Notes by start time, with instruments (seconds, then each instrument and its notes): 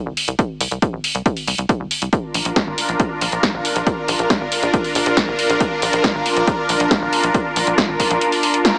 0.06 analog synth bass C2
0.17 open hi-hat
0.28 analog synth bass C2, closed hi-hat
0.39 kick, closed hi-hat
0.61 analog synth bass C2, open hi-hat
0.71 analog synth bass C2, closed hi-hat
0.82 kick, closed hi-hat
0.93 analog synth bass A#1
1.04 open hi-hat
1.15 analog synth bass C2, closed hi-hat
1.26 kick, closed hi-hat
1.37 open hi-hat
1.47 analog synth bass C2, open hi-hat
1.58 analog synth bass C2, closed hi-hat
1.69 kick, closed hi-hat
1.80 analog synth bass C2
1.91 open hi-hat
2.02 analog synth bass C2, closed hi-hat
2.13 supersaw synth D4 F4 A#4, kick, closed hi-hat
2.34 analog synth bass A#1, open hi-hat
2.45 analog synth bass A#1, closed hi-hat
2.56 kick, snare, closed hi-hat
2.67 analog synth bass G#1
2.78 open hi-hat
2.89 analog synth bass A#1, closed hi-hat
3.00 kick, closed hi-hat
3.21 analog synth bass A#1, open hi-hat
3.32 analog synth bass A#1, closed hi-hat
3.43 kick, snare, closed hi-hat
3.54 analog synth bass A#1
3.65 open hi-hat
3.76 analog synth bass A#1, closed hi-hat
3.87 kick, closed hi-hat
4.08 analog synth bass A#1, open hi-hat
4.19 analog synth bass A#1, closed hi-hat
4.30 kick, snare, closed hi-hat
4.41 analog synth bass G#1
4.52 open hi-hat
4.63 analog synth bass A#1, closed hi-hat
4.74 kick, closed hi-hat
4.84 open hi-hat
4.95 analog synth bass A#1, open hi-hat
5.06 analog synth bass A#1, closed hi-hat
5.17 kick, snare, closed hi-hat
5.28 analog synth bass A#1
5.39 open hi-hat
5.50 analog synth bass A#1, closed hi-hat
5.60 kick, closed hi-hat
5.82 analog synth bass A#1, open hi-hat
5.93 analog synth bass A#1, closed hi-hat
6.04 kick, snare, closed hi-hat
6.15 analog synth bass G#1
6.26 open hi-hat
6.37 analog synth bass A#1, closed hi-hat
6.47 kick, closed hi-hat
6.69 analog synth bass A#1, open hi-hat
6.80 analog synth bass A#1, closed hi-hat
6.91 kick, snare, closed hi-hat
7.02 analog synth bass A#1
7.13 open hi-hat
7.24 analog synth bass A#1, closed hi-hat
7.34 kick, closed hi-hat
7.56 analog synth bass A#1, open hi-hat
7.67 analog synth bass A#1, closed hi-hat
7.78 kick, snare, closed hi-hat
7.89 analog synth bass G#1
8.00 kick, open hi-hat
8.11 analog synth bass A#1, closed hi-hat
8.21 closed hi-hat
8.32 open hi-hat
8.43 open hi-hat
8.54 closed hi-hat
8.65 snare, closed hi-hat